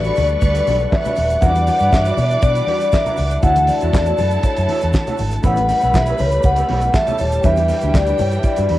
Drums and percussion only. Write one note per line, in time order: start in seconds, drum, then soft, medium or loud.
0.04 closed hi-hat medium
0.04 muted conga soft
0.04 shaker medium
0.16 open hi-hat medium
0.16 high conga medium
0.16 low conga medium
0.16 shaker medium
0.29 closed hi-hat soft
0.29 shaker medium
0.41 kick loud
0.41 closed hi-hat medium
0.41 muted conga soft
0.41 shaker medium
0.55 closed hi-hat medium
0.55 muted conga soft
0.55 shaker medium
0.67 open hi-hat medium
0.67 high conga medium
0.67 shaker medium
0.80 closed hi-hat soft
0.80 shaker medium
0.92 kick loud
0.92 snare loud
0.92 clap loud
0.92 muted conga soft
0.92 shaker medium
1.05 closed hi-hat soft
1.05 low conga medium
1.05 shaker medium
1.16 open hi-hat medium
1.16 high conga medium
1.16 shaker medium
1.30 closed hi-hat medium
1.30 shaker medium
1.42 kick loud
1.42 closed hi-hat medium
1.42 muted conga soft
1.42 low conga medium
1.42 shaker medium
1.55 closed hi-hat medium
1.55 muted conga soft
1.55 high conga medium
1.55 shaker soft
1.67 open hi-hat medium
1.67 high conga medium
1.67 shaker medium
1.79 closed hi-hat soft
1.79 shaker medium
1.93 kick loud
1.93 snare loud
1.93 clap loud
1.93 high conga loud
1.93 shaker medium
2.05 closed hi-hat medium
2.05 muted conga soft
2.05 shaker medium
2.17 open hi-hat medium
2.17 high conga medium
2.17 low conga medium
2.17 shaker medium
2.30 closed hi-hat medium
2.30 shaker medium
2.42 kick loud
2.42 closed hi-hat medium
2.42 shaker medium
2.55 closed hi-hat medium
2.55 muted conga soft
2.55 shaker medium
2.67 open hi-hat medium
2.67 high conga medium
2.80 closed hi-hat soft
2.80 shaker medium
2.92 kick loud
2.92 snare loud
2.92 clap medium
2.92 muted conga soft
2.92 shaker medium
3.06 closed hi-hat soft
3.06 muted conga soft
3.06 low conga medium
3.06 shaker medium
3.17 open hi-hat medium
3.17 high conga medium
3.17 shaker medium
3.30 closed hi-hat medium
3.30 shaker medium
3.43 kick loud
3.43 closed hi-hat medium
3.43 muted conga soft
3.43 low conga medium
3.43 shaker medium
3.56 closed hi-hat medium
3.56 muted conga soft
3.56 high conga medium
3.56 shaker soft
3.67 open hi-hat medium
3.67 high conga medium
3.67 shaker medium
3.81 closed hi-hat soft
3.81 shaker medium
3.93 kick loud
3.93 snare loud
3.93 clap medium
3.93 muted conga soft
3.93 high conga loud
3.93 shaker medium
4.06 closed hi-hat soft
4.06 muted conga soft
4.06 shaker medium
4.17 open hi-hat medium
4.17 high conga medium
4.17 low conga medium
4.17 shaker medium
4.31 closed hi-hat soft
4.31 shaker medium
4.43 kick loud
4.43 closed hi-hat medium
4.43 shaker medium
4.56 closed hi-hat medium
4.56 shaker medium
4.68 open hi-hat medium
4.68 high conga medium
4.81 closed hi-hat soft
4.81 shaker medium
4.93 kick loud
4.93 snare loud
4.93 clap medium
4.93 shaker medium
5.07 closed hi-hat soft
5.07 muted conga soft
5.07 low conga medium
5.07 shaker medium
5.17 open hi-hat medium
5.17 high conga medium
5.17 shaker medium
5.31 closed hi-hat medium
5.31 shaker medium
5.43 kick loud
5.43 closed hi-hat medium
5.43 muted conga soft
5.43 low conga medium
5.43 shaker medium
5.56 closed hi-hat medium
5.56 muted conga soft
5.56 high conga medium
5.56 shaker medium
5.69 open hi-hat medium
5.69 high conga medium
5.69 shaker medium
5.81 closed hi-hat soft
5.81 shaker medium
5.94 kick loud
5.94 snare loud
5.94 clap loud
5.94 muted conga soft
5.94 high conga medium
5.94 shaker medium
6.06 closed hi-hat medium
6.06 shaker medium
6.18 open hi-hat medium
6.18 high conga medium
6.18 low conga medium
6.18 shaker medium
6.31 closed hi-hat soft
6.31 shaker medium
6.43 kick loud
6.43 closed hi-hat medium
6.43 shaker medium
6.56 closed hi-hat medium
6.56 muted conga soft
6.56 shaker medium
6.69 open hi-hat medium
6.69 high conga medium
6.81 closed hi-hat soft
6.81 shaker medium
6.94 kick loud
6.94 snare loud
6.94 clap loud
6.94 muted conga soft
6.94 shaker medium
7.07 closed hi-hat soft
7.07 low conga medium
7.07 shaker medium
7.18 open hi-hat medium
7.18 high conga medium
7.18 shaker medium
7.32 closed hi-hat soft
7.32 shaker medium
7.43 kick loud
7.43 closed hi-hat medium
7.43 muted conga soft
7.43 low conga medium
7.43 shaker medium
7.56 closed hi-hat medium
7.56 muted conga soft
7.56 high conga medium
7.56 shaker medium
7.68 open hi-hat medium
7.68 high conga medium
7.68 shaker medium
7.81 closed hi-hat soft
7.81 shaker medium
7.94 kick loud
7.94 snare loud
7.94 clap medium
7.94 muted conga soft
7.94 high conga medium
7.94 shaker medium
8.07 closed hi-hat medium
8.07 muted conga soft
8.07 shaker medium
8.18 open hi-hat medium
8.18 high conga medium
8.18 low conga medium
8.18 shaker medium
8.32 closed hi-hat medium
8.32 shaker medium
8.43 kick loud
8.43 closed hi-hat medium
8.43 shaker medium
8.56 closed hi-hat medium
8.56 muted conga soft
8.56 shaker medium
8.69 open hi-hat medium
8.69 high conga medium